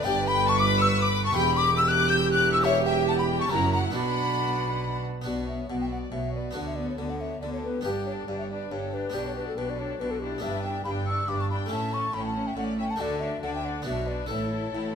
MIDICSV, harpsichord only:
0, 0, Header, 1, 2, 480
1, 0, Start_track
1, 0, Tempo, 431655
1, 67, Time_signature, 3, 2, 24, 8
1, 16624, End_track
2, 0, Start_track
2, 0, Title_t, "Harpsichord"
2, 0, Program_c, 0, 6
2, 24, Note_on_c, 0, 59, 72
2, 40, Note_on_c, 0, 62, 71
2, 59, Note_on_c, 0, 67, 74
2, 74, Note_on_c, 0, 43, 83
2, 1440, Note_off_c, 0, 59, 0
2, 1448, Note_off_c, 0, 62, 0
2, 1457, Note_off_c, 0, 67, 0
2, 1457, Note_on_c, 0, 59, 73
2, 1464, Note_off_c, 0, 43, 0
2, 1472, Note_on_c, 0, 64, 77
2, 1489, Note_on_c, 0, 67, 75
2, 1507, Note_on_c, 0, 40, 77
2, 2875, Note_off_c, 0, 59, 0
2, 2883, Note_off_c, 0, 64, 0
2, 2892, Note_off_c, 0, 67, 0
2, 2898, Note_on_c, 0, 61, 62
2, 2911, Note_on_c, 0, 64, 66
2, 2932, Note_on_c, 0, 67, 71
2, 3842, Note_off_c, 0, 61, 0
2, 3855, Note_on_c, 0, 61, 61
2, 3860, Note_off_c, 0, 64, 0
2, 3863, Note_off_c, 0, 40, 0
2, 3871, Note_off_c, 0, 67, 0
2, 3874, Note_on_c, 0, 64, 60
2, 3890, Note_on_c, 0, 66, 60
2, 3910, Note_on_c, 0, 42, 63
2, 4342, Note_on_c, 0, 59, 64
2, 4349, Note_off_c, 0, 42, 0
2, 4351, Note_off_c, 0, 61, 0
2, 4356, Note_on_c, 0, 62, 61
2, 4357, Note_off_c, 0, 66, 0
2, 4361, Note_off_c, 0, 64, 0
2, 4371, Note_on_c, 0, 66, 61
2, 4388, Note_on_c, 0, 47, 60
2, 5584, Note_off_c, 0, 47, 0
2, 5785, Note_off_c, 0, 59, 0
2, 5792, Note_off_c, 0, 62, 0
2, 5799, Note_off_c, 0, 66, 0
2, 5800, Note_on_c, 0, 59, 33
2, 5822, Note_on_c, 0, 62, 32
2, 5838, Note_on_c, 0, 66, 36
2, 5855, Note_on_c, 0, 47, 36
2, 6244, Note_off_c, 0, 47, 0
2, 6334, Note_on_c, 0, 47, 33
2, 6724, Note_off_c, 0, 47, 0
2, 6804, Note_on_c, 0, 47, 33
2, 7198, Note_off_c, 0, 47, 0
2, 7224, Note_off_c, 0, 59, 0
2, 7236, Note_off_c, 0, 62, 0
2, 7238, Note_on_c, 0, 59, 37
2, 7244, Note_off_c, 0, 66, 0
2, 7254, Note_on_c, 0, 62, 30
2, 7267, Note_on_c, 0, 66, 35
2, 7284, Note_on_c, 0, 50, 40
2, 7677, Note_off_c, 0, 50, 0
2, 7767, Note_on_c, 0, 50, 37
2, 8157, Note_off_c, 0, 50, 0
2, 8261, Note_on_c, 0, 50, 41
2, 8646, Note_off_c, 0, 50, 0
2, 8659, Note_off_c, 0, 59, 0
2, 8667, Note_off_c, 0, 62, 0
2, 8674, Note_off_c, 0, 66, 0
2, 8685, Note_on_c, 0, 59, 35
2, 8700, Note_on_c, 0, 62, 35
2, 8724, Note_on_c, 0, 67, 36
2, 8735, Note_on_c, 0, 43, 37
2, 9122, Note_off_c, 0, 43, 0
2, 9211, Note_on_c, 0, 43, 38
2, 9599, Note_off_c, 0, 43, 0
2, 9692, Note_on_c, 0, 43, 38
2, 10078, Note_off_c, 0, 43, 0
2, 10100, Note_off_c, 0, 59, 0
2, 10108, Note_off_c, 0, 62, 0
2, 10116, Note_on_c, 0, 59, 38
2, 10120, Note_off_c, 0, 67, 0
2, 10132, Note_on_c, 0, 62, 36
2, 10154, Note_on_c, 0, 67, 38
2, 10168, Note_on_c, 0, 47, 39
2, 10553, Note_off_c, 0, 47, 0
2, 10654, Note_on_c, 0, 47, 44
2, 11035, Note_off_c, 0, 47, 0
2, 11136, Note_on_c, 0, 47, 42
2, 11515, Note_off_c, 0, 47, 0
2, 11527, Note_off_c, 0, 59, 0
2, 11535, Note_off_c, 0, 62, 0
2, 11546, Note_off_c, 0, 67, 0
2, 11546, Note_on_c, 0, 59, 39
2, 11562, Note_on_c, 0, 62, 39
2, 11576, Note_on_c, 0, 64, 36
2, 11591, Note_on_c, 0, 43, 44
2, 11979, Note_off_c, 0, 43, 0
2, 12072, Note_on_c, 0, 43, 43
2, 12459, Note_off_c, 0, 43, 0
2, 12546, Note_on_c, 0, 43, 47
2, 12935, Note_off_c, 0, 43, 0
2, 12958, Note_off_c, 0, 59, 0
2, 12966, Note_off_c, 0, 62, 0
2, 12967, Note_on_c, 0, 57, 42
2, 12974, Note_off_c, 0, 64, 0
2, 12989, Note_on_c, 0, 61, 44
2, 13002, Note_on_c, 0, 64, 44
2, 13020, Note_on_c, 0, 45, 45
2, 13409, Note_off_c, 0, 45, 0
2, 13494, Note_on_c, 0, 45, 43
2, 13884, Note_off_c, 0, 45, 0
2, 13977, Note_on_c, 0, 45, 47
2, 14365, Note_off_c, 0, 45, 0
2, 14383, Note_off_c, 0, 57, 0
2, 14394, Note_off_c, 0, 61, 0
2, 14402, Note_off_c, 0, 64, 0
2, 14413, Note_on_c, 0, 57, 43
2, 14424, Note_on_c, 0, 62, 39
2, 14439, Note_on_c, 0, 66, 43
2, 14458, Note_on_c, 0, 50, 46
2, 14846, Note_off_c, 0, 50, 0
2, 14938, Note_on_c, 0, 50, 45
2, 15328, Note_off_c, 0, 50, 0
2, 15365, Note_off_c, 0, 62, 0
2, 15368, Note_off_c, 0, 57, 0
2, 15369, Note_on_c, 0, 59, 42
2, 15379, Note_on_c, 0, 62, 43
2, 15381, Note_off_c, 0, 66, 0
2, 15395, Note_on_c, 0, 66, 38
2, 15415, Note_on_c, 0, 47, 48
2, 15811, Note_off_c, 0, 47, 0
2, 15862, Note_on_c, 0, 64, 45
2, 15865, Note_off_c, 0, 59, 0
2, 15870, Note_off_c, 0, 62, 0
2, 15878, Note_off_c, 0, 66, 0
2, 15878, Note_on_c, 0, 69, 41
2, 15910, Note_on_c, 0, 45, 44
2, 16301, Note_off_c, 0, 45, 0
2, 16398, Note_on_c, 0, 45, 44
2, 16624, Note_off_c, 0, 45, 0
2, 16624, Note_off_c, 0, 64, 0
2, 16624, Note_off_c, 0, 69, 0
2, 16624, End_track
0, 0, End_of_file